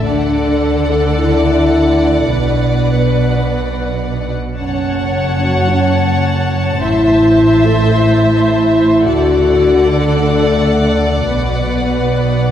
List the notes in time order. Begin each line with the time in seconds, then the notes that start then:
0.06 D2 D3 D4 A4 D5 F#5
0.90 A4
1.18 E4
2.29 B1 B2 D4 B4
4.57 F#1 F#2 C#4 C#5 F#5 A5
5.41 F#4
5.69 C#4
6.81 A1 A2 E4 C5 E5
7.66 A4
7.93 E4
9.04 D2 D3 F#4 A4 D5 F#5
9.88 D4
10.16 A3
11.28 B1 B2 B3 B4